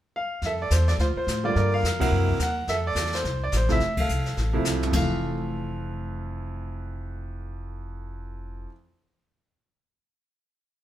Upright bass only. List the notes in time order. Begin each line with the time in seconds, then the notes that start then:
0.42 F2
0.70 E2
0.98 D2
1.16 muted upright bass stroke
1.27 A2
1.55 G2
1.83 F2
2.11 F#2
2.39 D#2
2.68 F2
2.95 E2
3.24 C2
3.52 A1
3.80 F1
4.09 C2
4.37 A1
4.65 C2
4.93 F1